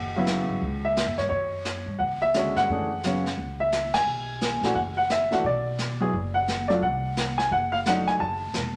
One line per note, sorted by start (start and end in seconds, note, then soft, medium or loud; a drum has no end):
0.00 0.45 F#1 medium
0.00 0.79 F#5 medium
0.16 0.60 C#3 medium
0.16 0.61 F#3 medium
0.16 0.61 B3 medium
0.16 0.61 E4 medium
0.26 snare medium
0.26 hi-hat pedal medium
0.49 0.61 G1 medium
0.61 1.04 C#2 medium
0.61 brush sweep soft
0.61 kick soft
0.85 1.16 E5 medium
0.96 snare medium
0.96 hi-hat pedal medium
1.07 1.18 F#2 medium
1.18 1.29 G2 medium
1.18 1.23 C#5 medium
1.18 snare soft
1.29 1.83 F#2 medium
1.29 1.95 C#5 medium
1.29 brush sweep soft
1.29 kick soft
1.65 snare medium
1.65 hi-hat pedal medium
1.86 1.98 G2 medium
1.99 2.52 C#2 medium
1.99 2.22 F#5 medium
1.99 brush sweep medium
1.99 kick soft
2.22 2.57 E5 loud
2.34 2.86 D3 medium
2.34 2.87 G#3 medium
2.34 2.87 C#4 medium
2.34 2.87 F#4 medium
2.34 snare medium
2.34 hi-hat pedal medium
2.55 2.67 G2 medium
2.55 3.63 F#5 loud
2.55 snare soft
2.69 3.34 F#2 medium
2.69 2.89 E3 medium
2.69 2.89 A3 medium
2.69 2.90 D4 soft
2.69 2.90 G#4 medium
2.69 brush sweep soft
2.69 kick soft
3.03 3.23 C#3 medium
3.03 3.23 F#3 medium
3.03 3.24 B3 soft
3.03 3.24 C#4 medium
3.03 snare medium
3.03 hi-hat pedal medium
3.26 snare soft
3.37 4.03 C#2 medium
3.37 brush sweep medium
3.37 kick soft
3.60 3.92 E5 medium
3.72 snare medium
3.72 hi-hat pedal medium
3.93 4.78 G#5 loud
3.93 snare medium
3.93 ride medium
4.05 4.58 B1 medium
4.05 brush sweep soft
4.41 snare soft
4.41 hi-hat pedal medium
4.61 4.74 A#1 medium
4.61 4.75 E3 medium
4.61 4.75 A3 medium
4.61 4.75 D4 medium
4.61 snare soft
4.65 4.75 F#4 medium
4.75 5.41 F#1 medium
4.75 4.80 F#5 medium
4.75 brush sweep medium
4.75 kick soft
4.97 5.10 F#5 medium
5.09 5.33 E5 loud
5.09 snare medium
5.09 hi-hat pedal medium
5.31 5.43 E3 medium
5.31 5.43 A3 medium
5.31 5.43 D4 medium
5.31 5.44 F#4 medium
5.31 5.44 F#5 medium
5.31 snare soft
5.44 6.09 B1 medium
5.44 6.38 D5 medium
5.44 brush sweep soft
5.44 kick soft
5.78 snare soft
5.78 hi-hat pedal medium
6.00 6.12 F#3 medium
6.00 6.12 B3 medium
6.00 6.12 E4 medium
6.00 6.12 G#4 medium
6.13 6.78 F#1 medium
6.13 brush sweep soft
6.13 kick soft
6.34 6.70 F#5 medium
6.48 snare medium
6.48 hi-hat pedal medium
6.68 6.81 F#3 medium
6.68 6.81 A3 medium
6.68 6.81 D4 medium
6.68 6.82 F4 medium
6.68 6.73 D5 medium
6.68 snare soft
6.82 7.47 C2 medium
6.82 7.40 F#5 medium
6.82 brush sweep medium
6.82 kick soft
7.17 snare medium
7.17 hi-hat pedal medium
7.38 7.50 G#5 medium
7.38 snare soft
7.51 8.16 F#1 medium
7.51 7.72 F#5 medium
7.51 brush sweep medium
7.51 kick soft
7.72 7.77 F5 loud
7.85 8.21 F#3 medium
7.85 8.21 A3 soft
7.85 8.21 D4 medium
7.85 8.21 D#4 medium
7.85 8.06 F#5 loud
7.85 snare medium
7.85 hi-hat pedal medium
8.07 8.12 G#5 medium
8.07 snare soft
8.20 8.52 F#1 medium
8.20 8.76 A5 medium
8.20 brush sweep soft
8.20 kick soft
8.53 8.76 E1 medium
8.53 snare medium
8.53 hi-hat pedal medium